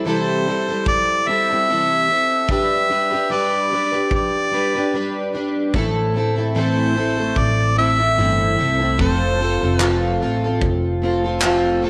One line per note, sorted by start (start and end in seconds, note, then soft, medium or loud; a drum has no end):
0.04 0.46 C3 medium
0.04 0.46 E3 medium
0.04 0.44 G3 medium
0.04 0.45 C4 medium
0.04 0.47 E4 medium
0.04 0.47 A4 medium
0.04 0.84 C5 medium
0.45 0.68 G3 soft
0.45 0.69 C4 medium
0.45 0.68 E4 medium
0.45 0.67 A4 medium
0.68 1.26 G3 soft
0.68 1.27 C4 soft
0.68 1.28 E4 soft
0.68 1.27 A4 medium
0.86 1.29 D5 loud
0.86 kick loud
1.27 1.50 G3 medium
1.27 1.50 C4 medium
1.27 1.50 E4 medium
1.27 1.49 A4 medium
1.27 2.49 E5 loud
1.50 1.68 G3 soft
1.50 1.69 C4 soft
1.50 1.69 E4 soft
1.50 1.68 A4 medium
1.69 2.09 C3 medium
1.69 2.09 E3 medium
1.69 2.07 G3 medium
1.69 2.08 C4 medium
1.69 2.09 E4 medium
1.69 2.10 A4 medium
2.08 2.47 G3 medium
2.08 2.50 C4 medium
2.08 2.50 E4 medium
2.08 2.51 A4 medium
2.49 2.88 G3 medium
2.49 2.89 D4 medium
2.49 2.90 G4 medium
2.49 2.91 B4 medium
2.49 3.34 E5 loud
2.49 kick loud
2.89 3.12 G3 medium
2.89 3.13 D4 medium
2.89 3.11 G4 medium
2.89 3.10 B4 medium
3.11 3.29 D4 soft
3.11 3.30 G4 soft
3.11 3.30 B4 soft
3.30 3.70 G3 medium
3.30 3.71 D4 medium
3.30 3.71 G4 medium
3.30 3.72 B4 medium
3.30 4.12 D5 medium
3.71 3.93 G3 medium
3.71 3.94 D4 medium
3.71 3.92 G4 medium
3.71 3.91 B4 medium
3.92 4.51 D4 soft
3.92 4.52 G4 soft
3.92 4.51 B4 soft
4.11 5.31 D5 medium
4.11 kick loud
4.51 4.74 G3 medium
4.51 4.75 D4 soft
4.51 4.75 G4 medium
4.51 4.74 B4 medium
4.75 4.93 D4 soft
4.75 4.94 G4 soft
4.75 4.93 B4 medium
4.94 5.32 G3 medium
4.94 5.33 D4 medium
4.94 5.35 G4 medium
4.94 5.35 B4 medium
5.33 5.74 G3 soft
5.33 5.75 D4 medium
5.33 5.75 G4 medium
5.33 5.76 B4 medium
5.74 7.32 A1 medium
5.74 6.15 A2 medium
5.74 6.15 E3 medium
5.74 6.13 A3 medium
5.74 6.15 C4 medium
5.74 6.16 E4 medium
5.74 6.16 A4 medium
5.74 kick loud
6.14 6.37 A3 medium
6.14 6.37 C4 medium
6.14 6.36 E4 medium
6.14 6.35 A4 medium
6.36 6.54 A3 soft
6.36 6.55 C4 soft
6.36 6.55 E4 soft
6.36 6.55 A4 soft
6.55 6.95 A2 medium
6.55 6.96 E3 medium
6.55 6.93 A3 medium
6.55 6.94 C4 medium
6.55 6.96 E4 medium
6.55 6.97 A4 medium
6.55 7.40 C5 medium
6.94 7.17 A3 soft
6.94 7.18 C4 medium
6.94 7.17 E4 medium
6.94 7.16 A4 medium
7.17 7.75 A3 soft
7.17 7.76 C4 soft
7.17 7.77 E4 medium
7.17 7.77 A4 soft
7.36 8.13 A1 medium
7.36 7.78 D5 loud
7.36 kick loud
7.76 7.99 A3 medium
7.76 7.99 C4 medium
7.76 7.99 E4 medium
7.76 7.97 A4 medium
7.76 8.96 E5 loud
7.98 8.17 A3 soft
7.98 8.18 C4 soft
7.98 8.18 E4 soft
7.98 8.17 A4 soft
8.17 8.55 G1 medium
8.17 8.58 A2 medium
8.17 8.58 E3 medium
8.17 8.56 A3 medium
8.17 8.57 C4 medium
8.17 8.58 E4 medium
8.17 8.59 A4 medium
8.57 8.96 C2 medium
8.57 8.80 A3 soft
8.57 8.80 C4 medium
8.57 8.79 E4 medium
8.57 8.78 A4 medium
8.79 8.97 A3 soft
8.79 8.98 C4 soft
8.79 8.99 E4 soft
8.79 8.98 A4 soft
8.98 9.58 F1 medium
8.98 9.39 F3 medium
8.98 9.38 A3 medium
8.98 9.40 C4 medium
8.98 9.40 F4 medium
8.98 9.40 A4 medium
8.98 9.77 C5 medium
8.98 kick loud
9.39 9.62 A3 medium
9.39 9.62 C4 medium
9.39 9.62 F4 medium
9.39 9.60 A4 medium
9.61 10.17 F1 medium
9.61 9.79 C4 soft
9.61 9.80 F4 soft
9.61 9.80 A4 soft
9.77 10.20 F3 medium
9.77 10.19 A3 medium
9.77 10.20 C4 medium
9.77 10.21 F4 medium
9.77 10.21 A4 medium
9.77 10.18 B4 medium
9.77 clap loud
10.20 10.59 A1 medium
10.20 10.43 A3 medium
10.20 10.44 C4 medium
10.20 10.44 F4 medium
10.20 10.43 A4 medium
10.44 11.02 C4 soft
10.44 11.03 F4 medium
10.44 11.03 A4 medium
10.61 11.90 F1 medium
10.61 kick loud
11.02 11.24 A3 medium
11.02 11.25 C4 medium
11.02 11.24 F4 medium
11.02 11.23 A4 medium
11.24 11.42 C4 soft
11.24 11.43 F4 medium
11.24 11.43 A4 medium
11.42 11.83 F3 medium
11.42 11.81 A3 medium
11.42 11.82 C4 medium
11.42 11.83 F4 medium
11.42 11.84 A4 medium
11.42 clap loud
11.82 11.90 A3 medium
11.82 11.90 C4 medium
11.82 11.90 F4 medium
11.82 11.90 A4 medium